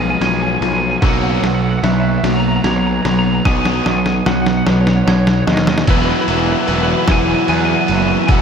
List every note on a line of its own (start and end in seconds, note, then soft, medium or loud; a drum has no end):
0.00 0.14 B1 medium
0.00 0.17 B2 medium
0.00 0.21 B2 medium
0.00 0.17 F3 medium
0.00 0.62 F3 medium
0.00 1.01 G#3 medium
0.00 1.03 G#3 medium
0.00 3.43 C#4 medium
0.00 1.01 F4 medium
0.00 3.43 C#5 medium
0.00 1.01 F5 medium
0.00 0.10 G#5 medium
0.00 0.21 F6 medium
0.10 0.18 G#5 medium
0.18 0.56 B1 medium
0.18 0.58 B2 medium
0.18 0.58 F3 medium
0.18 0.25 G#5 medium
0.18 1.03 G#6 medium
0.18 snare medium
0.18 ride medium
0.26 0.33 G#5 medium
0.34 0.42 G#5 medium
0.42 0.50 G#5 medium
0.51 0.58 G#5 medium
0.58 0.96 B1 medium
0.58 0.99 B2 medium
0.58 0.66 G#5 medium
0.62 0.99 F3 medium
0.62 0.73 G#5 medium
0.62 ride medium
0.74 0.82 G#5 medium
0.83 0.90 G#5 medium
0.91 0.97 G#5 medium
0.98 1.09 F#5 medium
0.98 1.00 G#5 medium
1.02 1.37 B1 loud
1.02 1.41 B2 medium
1.02 1.41 F#3 loud
1.02 1.41 A#3 loud
1.02 3.44 A#3 medium
1.02 5.85 F#4 medium
1.02 3.44 F#5 medium
1.02 1.84 E6 medium
1.02 kick loud
1.02 snare medium
1.02 crash medium
1.09 1.16 F#5 medium
1.17 1.23 F#5 medium
1.24 1.30 F#5 medium
1.30 1.38 F#5 medium
1.40 1.77 B1 medium
1.40 1.80 B2 medium
1.40 1.80 F#3 medium
1.40 1.47 F#5 medium
1.44 1.54 F#5 medium
1.44 snare medium
1.44 ride medium
1.54 1.62 F#5 medium
1.64 1.70 F#5 medium
1.71 1.78 F#5 medium
1.78 1.86 F#5 medium
1.83 2.17 B1 medium
1.83 2.20 B2 medium
1.83 2.21 F#3 medium
1.83 1.92 E5 medium
1.83 2.65 F#6 medium
1.83 snare medium
1.83 ride medium
1.92 1.99 E5 medium
2.00 2.08 E5 medium
2.09 2.17 E5 medium
2.17 2.26 E5 medium
2.24 2.58 B1 loud
2.24 2.61 B2 medium
2.24 2.61 F#3 medium
2.24 3.46 A#3 medium
2.24 2.32 A#5 medium
2.24 snare medium
2.24 ride medium
2.32 2.39 A#5 medium
2.40 2.48 A#5 medium
2.48 2.56 A#5 medium
2.56 2.63 A#5 medium
2.63 2.99 B1 medium
2.63 3.01 B2 medium
2.63 3.01 F#3 medium
2.63 2.71 A#5 medium
2.63 3.46 G#6 medium
2.63 snare medium
2.63 ride medium
2.71 2.79 A#5 medium
2.79 2.86 A#5 medium
2.87 2.94 A#5 medium
2.95 3.02 A#5 medium
3.02 3.39 B1 medium
3.02 3.42 B2 medium
3.02 3.42 F#3 medium
3.02 3.09 A#5 medium
3.02 snare medium
3.02 ride medium
3.10 3.17 A#5 medium
3.19 3.26 A#5 medium
3.26 3.34 A#5 medium
3.35 3.41 A#5 medium
3.41 3.45 A#5 medium
3.45 3.80 B1 loud
3.45 3.84 B2 medium
3.45 3.84 F#3 loud
3.45 3.84 B3 loud
3.45 5.86 B3 medium
3.45 5.86 D#4 medium
3.45 5.86 D#5 medium
3.45 5.86 F#5 medium
3.45 3.52 G#5 medium
3.45 4.27 D#6 medium
3.45 kick loud
3.45 snare medium
3.53 3.60 G#5 medium
3.60 3.68 G#5 medium
3.65 snare loud
3.75 3.83 G#5 medium
3.84 4.20 B1 medium
3.84 4.23 B2 medium
3.84 4.23 F#3 medium
3.84 3.91 G#5 medium
3.84 snare loud
3.91 3.98 G#5 medium
3.98 4.06 G#5 medium
4.06 4.14 G#5 medium
4.06 snare medium
4.14 4.20 G#5 medium
4.21 4.26 G#5 medium
4.26 4.61 B1 loud
4.26 4.63 B2 medium
4.26 4.63 F#3 loud
4.26 4.34 F#5 medium
4.26 5.07 F#6 medium
4.26 snare loud
4.34 4.41 F#5 medium
4.42 4.49 F#5 medium
4.46 4.57 F#5 medium
4.46 snare medium
4.57 4.65 F#5 medium
4.66 5.01 B1 loud
4.66 5.04 B2 medium
4.66 5.04 F#3 medium
4.66 5.88 B3 medium
4.66 4.73 C#5 medium
4.66 snare loud
4.73 4.81 C#5 medium
4.81 4.88 C#5 medium
4.87 4.96 C#5 medium
4.87 snare loud
4.97 5.03 C#5 medium
5.03 5.41 B1 medium
5.03 5.11 C#5 medium
5.07 5.44 B2 medium
5.07 5.44 F#3 medium
5.07 5.88 G#6 medium
5.07 snare loud
5.12 5.19 C#5 medium
5.20 5.27 C#5 medium
5.27 5.35 C#5 medium
5.27 snare loud
5.36 5.42 C#5 medium
5.42 5.47 C#5 medium
5.47 5.82 D#2 medium
5.47 5.84 B2 medium
5.47 5.84 F#3 medium
5.47 5.54 D#5 medium
5.47 snare loud
5.54 5.61 D#5 medium
5.54 snare loud
5.62 5.69 D#5 medium
5.67 5.77 D#5 medium
5.67 snare loud
5.77 5.85 D#5 medium
5.77 snare loud
5.87 6.13 E1 loud
5.87 6.28 E3 medium
5.87 6.28 F#3 medium
5.87 6.29 B3 loud
5.87 8.42 B3 medium
5.87 8.42 E4 medium
5.87 6.29 E4 loud
5.87 8.42 F#4 medium
5.87 5.98 B4 medium
5.87 8.42 E5 medium
5.87 8.42 F#5 medium
5.87 6.67 E6 medium
5.87 kick loud
5.87 crash loud
5.87 ride loud
5.99 6.05 B4 medium
6.05 6.13 B4 medium
6.14 6.21 B4 medium
6.21 6.29 B4 medium
6.28 6.53 E1 medium
6.28 6.68 E3 medium
6.28 6.68 F#3 medium
6.28 6.69 B3 medium
6.28 6.69 E4 loud
6.28 6.37 B4 medium
6.28 ride medium
6.37 6.43 B4 medium
6.44 6.52 B4 medium
6.52 6.60 B4 medium
6.60 6.67 B4 medium
6.67 6.94 E1 medium
6.67 7.07 E3 medium
6.67 7.08 F#3 medium
6.67 7.09 B3 loud
6.67 7.08 E4 loud
6.67 6.75 B4 medium
6.67 7.49 E6 medium
6.67 ride medium
6.76 6.83 B4 medium
6.83 6.90 B4 medium
6.90 6.98 B4 medium
6.98 7.06 B4 medium
7.07 7.33 E1 loud
7.07 7.48 E3 loud
7.07 7.49 F#3 loud
7.07 7.49 B3 loud
7.07 7.49 E4 loud
7.07 7.14 B4 medium
7.07 kick medium
7.07 snare loud
7.07 ride loud
7.11 7.19 G#5 loud
7.19 7.27 G#5 medium
7.27 7.34 G#5 medium
7.34 7.41 G#5 medium
7.41 7.49 G#5 medium
7.48 7.74 E2 medium
7.48 8.28 E3 medium
7.48 8.29 F#3 medium
7.48 8.29 B3 medium
7.48 8.28 E4 loud
7.48 7.57 G#5 medium
7.48 8.30 F#6 medium
7.48 ride medium
7.58 7.65 G#5 medium
7.65 7.73 G#5 medium
7.74 7.80 G#5 medium
7.81 7.88 G#5 medium
7.88 8.14 F#1 medium
7.88 8.42 F#3 medium
7.88 7.95 G#5 medium
7.88 ride medium
7.96 8.02 G#5 medium
8.03 8.11 G#5 medium
8.12 8.19 G#5 medium
8.19 8.27 G#5 medium
8.27 8.42 E1 loud
8.27 8.42 E3 medium
8.27 8.42 F#3 loud
8.27 8.42 B3 loud
8.27 8.42 E4 loud
8.27 8.32 G#5 medium
8.27 8.42 E6 medium
8.27 kick loud
8.27 ride loud
8.32 8.40 F#5 loud